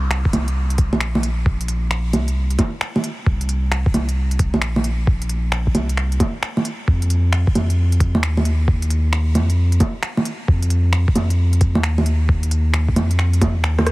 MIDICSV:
0, 0, Header, 1, 3, 480
1, 0, Start_track
1, 0, Tempo, 451128
1, 1555, Time_signature, 4, 2, 24, 8
1, 14809, End_track
2, 0, Start_track
2, 0, Title_t, "Sub bass"
2, 0, Program_c, 0, 38
2, 0, Note_on_c, 0, 36, 98
2, 250, Note_off_c, 0, 36, 0
2, 351, Note_on_c, 0, 36, 94
2, 988, Note_on_c, 0, 34, 95
2, 1004, Note_off_c, 0, 36, 0
2, 2269, Note_on_c, 0, 36, 93
2, 2285, Note_off_c, 0, 34, 0
2, 2741, Note_off_c, 0, 36, 0
2, 3472, Note_on_c, 0, 36, 103
2, 4088, Note_off_c, 0, 36, 0
2, 4188, Note_on_c, 0, 36, 99
2, 4825, Note_on_c, 0, 34, 99
2, 4841, Note_off_c, 0, 36, 0
2, 6111, Note_on_c, 0, 36, 99
2, 6127, Note_off_c, 0, 34, 0
2, 6582, Note_off_c, 0, 36, 0
2, 7318, Note_on_c, 0, 41, 97
2, 7931, Note_off_c, 0, 41, 0
2, 8035, Note_on_c, 0, 41, 98
2, 8668, Note_on_c, 0, 39, 94
2, 8684, Note_off_c, 0, 41, 0
2, 9954, Note_on_c, 0, 41, 99
2, 9970, Note_off_c, 0, 39, 0
2, 10423, Note_off_c, 0, 41, 0
2, 11153, Note_on_c, 0, 41, 106
2, 11768, Note_off_c, 0, 41, 0
2, 11866, Note_on_c, 0, 41, 99
2, 12507, Note_on_c, 0, 39, 101
2, 12523, Note_off_c, 0, 41, 0
2, 13789, Note_on_c, 0, 41, 98
2, 13805, Note_off_c, 0, 39, 0
2, 14427, Note_on_c, 0, 39, 83
2, 14443, Note_off_c, 0, 41, 0
2, 14809, Note_off_c, 0, 39, 0
2, 14809, End_track
3, 0, Start_track
3, 0, Title_t, "Drums"
3, 113, Note_on_c, 9, 26, 100
3, 219, Note_off_c, 9, 26, 0
3, 269, Note_on_c, 9, 36, 99
3, 353, Note_on_c, 9, 42, 50
3, 353, Note_on_c, 9, 61, 58
3, 375, Note_off_c, 9, 36, 0
3, 460, Note_off_c, 9, 42, 0
3, 460, Note_off_c, 9, 61, 0
3, 509, Note_on_c, 9, 42, 29
3, 616, Note_off_c, 9, 42, 0
3, 749, Note_on_c, 9, 42, 29
3, 831, Note_off_c, 9, 42, 0
3, 831, Note_on_c, 9, 42, 59
3, 833, Note_on_c, 9, 36, 97
3, 937, Note_off_c, 9, 42, 0
3, 939, Note_off_c, 9, 36, 0
3, 987, Note_on_c, 9, 61, 54
3, 1069, Note_on_c, 9, 26, 96
3, 1093, Note_off_c, 9, 61, 0
3, 1176, Note_off_c, 9, 26, 0
3, 1226, Note_on_c, 9, 61, 60
3, 1311, Note_on_c, 9, 42, 56
3, 1332, Note_off_c, 9, 61, 0
3, 1417, Note_off_c, 9, 42, 0
3, 1552, Note_on_c, 9, 36, 110
3, 1658, Note_off_c, 9, 36, 0
3, 1709, Note_on_c, 9, 42, 32
3, 1791, Note_off_c, 9, 42, 0
3, 1791, Note_on_c, 9, 42, 56
3, 1898, Note_off_c, 9, 42, 0
3, 2029, Note_on_c, 9, 26, 97
3, 2135, Note_off_c, 9, 26, 0
3, 2270, Note_on_c, 9, 42, 53
3, 2270, Note_on_c, 9, 61, 60
3, 2376, Note_off_c, 9, 42, 0
3, 2376, Note_off_c, 9, 61, 0
3, 2425, Note_on_c, 9, 42, 29
3, 2531, Note_off_c, 9, 42, 0
3, 2665, Note_on_c, 9, 42, 30
3, 2752, Note_off_c, 9, 42, 0
3, 2752, Note_on_c, 9, 36, 99
3, 2752, Note_on_c, 9, 42, 59
3, 2752, Note_on_c, 9, 61, 65
3, 2858, Note_off_c, 9, 42, 0
3, 2858, Note_off_c, 9, 61, 0
3, 2859, Note_off_c, 9, 36, 0
3, 2990, Note_on_c, 9, 26, 105
3, 3096, Note_off_c, 9, 26, 0
3, 3147, Note_on_c, 9, 61, 60
3, 3232, Note_on_c, 9, 42, 56
3, 3253, Note_off_c, 9, 61, 0
3, 3338, Note_off_c, 9, 42, 0
3, 3473, Note_on_c, 9, 36, 117
3, 3579, Note_off_c, 9, 36, 0
3, 3628, Note_on_c, 9, 42, 31
3, 3712, Note_off_c, 9, 42, 0
3, 3712, Note_on_c, 9, 42, 54
3, 3818, Note_off_c, 9, 42, 0
3, 3953, Note_on_c, 9, 26, 102
3, 4060, Note_off_c, 9, 26, 0
3, 4109, Note_on_c, 9, 36, 104
3, 4193, Note_on_c, 9, 42, 50
3, 4193, Note_on_c, 9, 61, 56
3, 4215, Note_off_c, 9, 36, 0
3, 4300, Note_off_c, 9, 42, 0
3, 4300, Note_off_c, 9, 61, 0
3, 4348, Note_on_c, 9, 42, 29
3, 4455, Note_off_c, 9, 42, 0
3, 4589, Note_on_c, 9, 42, 28
3, 4674, Note_off_c, 9, 42, 0
3, 4674, Note_on_c, 9, 42, 59
3, 4675, Note_on_c, 9, 36, 101
3, 4780, Note_off_c, 9, 42, 0
3, 4781, Note_off_c, 9, 36, 0
3, 4828, Note_on_c, 9, 61, 53
3, 4911, Note_on_c, 9, 26, 105
3, 4935, Note_off_c, 9, 61, 0
3, 5017, Note_off_c, 9, 26, 0
3, 5067, Note_on_c, 9, 61, 58
3, 5151, Note_on_c, 9, 42, 50
3, 5173, Note_off_c, 9, 61, 0
3, 5258, Note_off_c, 9, 42, 0
3, 5397, Note_on_c, 9, 36, 114
3, 5503, Note_off_c, 9, 36, 0
3, 5550, Note_on_c, 9, 42, 30
3, 5633, Note_off_c, 9, 42, 0
3, 5633, Note_on_c, 9, 42, 54
3, 5739, Note_off_c, 9, 42, 0
3, 5872, Note_on_c, 9, 26, 100
3, 5979, Note_off_c, 9, 26, 0
3, 6032, Note_on_c, 9, 36, 63
3, 6114, Note_on_c, 9, 42, 50
3, 6114, Note_on_c, 9, 61, 58
3, 6139, Note_off_c, 9, 36, 0
3, 6221, Note_off_c, 9, 42, 0
3, 6221, Note_off_c, 9, 61, 0
3, 6271, Note_on_c, 9, 42, 30
3, 6357, Note_on_c, 9, 26, 59
3, 6378, Note_off_c, 9, 42, 0
3, 6463, Note_off_c, 9, 26, 0
3, 6512, Note_on_c, 9, 42, 28
3, 6598, Note_off_c, 9, 42, 0
3, 6598, Note_on_c, 9, 36, 105
3, 6598, Note_on_c, 9, 42, 55
3, 6598, Note_on_c, 9, 61, 65
3, 6704, Note_off_c, 9, 36, 0
3, 6704, Note_off_c, 9, 42, 0
3, 6704, Note_off_c, 9, 61, 0
3, 6837, Note_on_c, 9, 26, 102
3, 6944, Note_off_c, 9, 26, 0
3, 6990, Note_on_c, 9, 61, 55
3, 7075, Note_on_c, 9, 42, 52
3, 7097, Note_off_c, 9, 61, 0
3, 7182, Note_off_c, 9, 42, 0
3, 7317, Note_on_c, 9, 36, 109
3, 7424, Note_off_c, 9, 36, 0
3, 7470, Note_on_c, 9, 42, 28
3, 7556, Note_off_c, 9, 42, 0
3, 7556, Note_on_c, 9, 42, 53
3, 7662, Note_off_c, 9, 42, 0
3, 7794, Note_on_c, 9, 26, 100
3, 7900, Note_off_c, 9, 26, 0
3, 7951, Note_on_c, 9, 36, 101
3, 8037, Note_on_c, 9, 42, 51
3, 8037, Note_on_c, 9, 61, 59
3, 8057, Note_off_c, 9, 36, 0
3, 8143, Note_off_c, 9, 42, 0
3, 8143, Note_off_c, 9, 61, 0
3, 8193, Note_on_c, 9, 42, 28
3, 8300, Note_off_c, 9, 42, 0
3, 8430, Note_on_c, 9, 42, 28
3, 8516, Note_off_c, 9, 42, 0
3, 8516, Note_on_c, 9, 36, 102
3, 8516, Note_on_c, 9, 42, 55
3, 8622, Note_off_c, 9, 36, 0
3, 8623, Note_off_c, 9, 42, 0
3, 8670, Note_on_c, 9, 61, 54
3, 8756, Note_on_c, 9, 26, 104
3, 8776, Note_off_c, 9, 61, 0
3, 8863, Note_off_c, 9, 26, 0
3, 8909, Note_on_c, 9, 61, 60
3, 8994, Note_on_c, 9, 42, 51
3, 9016, Note_off_c, 9, 61, 0
3, 9100, Note_off_c, 9, 42, 0
3, 9234, Note_on_c, 9, 36, 113
3, 9340, Note_off_c, 9, 36, 0
3, 9388, Note_on_c, 9, 42, 31
3, 9474, Note_off_c, 9, 42, 0
3, 9474, Note_on_c, 9, 42, 50
3, 9580, Note_off_c, 9, 42, 0
3, 9710, Note_on_c, 9, 26, 97
3, 9817, Note_off_c, 9, 26, 0
3, 9949, Note_on_c, 9, 42, 50
3, 9949, Note_on_c, 9, 61, 61
3, 10056, Note_off_c, 9, 42, 0
3, 10056, Note_off_c, 9, 61, 0
3, 10105, Note_on_c, 9, 42, 26
3, 10211, Note_off_c, 9, 42, 0
3, 10345, Note_on_c, 9, 42, 28
3, 10430, Note_off_c, 9, 42, 0
3, 10430, Note_on_c, 9, 42, 52
3, 10430, Note_on_c, 9, 61, 66
3, 10434, Note_on_c, 9, 36, 100
3, 10536, Note_off_c, 9, 42, 0
3, 10536, Note_off_c, 9, 61, 0
3, 10540, Note_off_c, 9, 36, 0
3, 10667, Note_on_c, 9, 26, 99
3, 10774, Note_off_c, 9, 26, 0
3, 10824, Note_on_c, 9, 61, 58
3, 10910, Note_on_c, 9, 42, 50
3, 10931, Note_off_c, 9, 61, 0
3, 11016, Note_off_c, 9, 42, 0
3, 11153, Note_on_c, 9, 36, 113
3, 11260, Note_off_c, 9, 36, 0
3, 11304, Note_on_c, 9, 42, 31
3, 11388, Note_off_c, 9, 42, 0
3, 11388, Note_on_c, 9, 42, 53
3, 11494, Note_off_c, 9, 42, 0
3, 11625, Note_on_c, 9, 26, 98
3, 11732, Note_off_c, 9, 26, 0
3, 11789, Note_on_c, 9, 36, 104
3, 11869, Note_on_c, 9, 42, 53
3, 11869, Note_on_c, 9, 61, 64
3, 11895, Note_off_c, 9, 36, 0
3, 11975, Note_off_c, 9, 42, 0
3, 11975, Note_off_c, 9, 61, 0
3, 12027, Note_on_c, 9, 42, 29
3, 12133, Note_off_c, 9, 42, 0
3, 12267, Note_on_c, 9, 42, 26
3, 12352, Note_off_c, 9, 42, 0
3, 12352, Note_on_c, 9, 42, 54
3, 12354, Note_on_c, 9, 36, 94
3, 12458, Note_off_c, 9, 42, 0
3, 12460, Note_off_c, 9, 36, 0
3, 12506, Note_on_c, 9, 61, 58
3, 12592, Note_on_c, 9, 26, 96
3, 12612, Note_off_c, 9, 61, 0
3, 12698, Note_off_c, 9, 26, 0
3, 12748, Note_on_c, 9, 61, 63
3, 12831, Note_on_c, 9, 42, 52
3, 12854, Note_off_c, 9, 61, 0
3, 12937, Note_off_c, 9, 42, 0
3, 13075, Note_on_c, 9, 36, 106
3, 13181, Note_off_c, 9, 36, 0
3, 13226, Note_on_c, 9, 42, 32
3, 13313, Note_off_c, 9, 42, 0
3, 13313, Note_on_c, 9, 42, 58
3, 13419, Note_off_c, 9, 42, 0
3, 13550, Note_on_c, 9, 26, 93
3, 13657, Note_off_c, 9, 26, 0
3, 13709, Note_on_c, 9, 36, 59
3, 13792, Note_on_c, 9, 42, 50
3, 13792, Note_on_c, 9, 61, 60
3, 13816, Note_off_c, 9, 36, 0
3, 13899, Note_off_c, 9, 42, 0
3, 13899, Note_off_c, 9, 61, 0
3, 13946, Note_on_c, 9, 42, 30
3, 14033, Note_on_c, 9, 26, 56
3, 14052, Note_off_c, 9, 42, 0
3, 14139, Note_off_c, 9, 26, 0
3, 14188, Note_on_c, 9, 42, 30
3, 14274, Note_off_c, 9, 42, 0
3, 14274, Note_on_c, 9, 36, 98
3, 14274, Note_on_c, 9, 42, 59
3, 14274, Note_on_c, 9, 61, 69
3, 14380, Note_off_c, 9, 36, 0
3, 14380, Note_off_c, 9, 42, 0
3, 14380, Note_off_c, 9, 61, 0
3, 14511, Note_on_c, 9, 26, 101
3, 14617, Note_off_c, 9, 26, 0
3, 14667, Note_on_c, 9, 37, 51
3, 14667, Note_on_c, 9, 61, 68
3, 14752, Note_off_c, 9, 37, 0
3, 14752, Note_on_c, 9, 37, 72
3, 14752, Note_on_c, 9, 42, 55
3, 14773, Note_off_c, 9, 61, 0
3, 14809, Note_off_c, 9, 37, 0
3, 14809, Note_off_c, 9, 42, 0
3, 14809, End_track
0, 0, End_of_file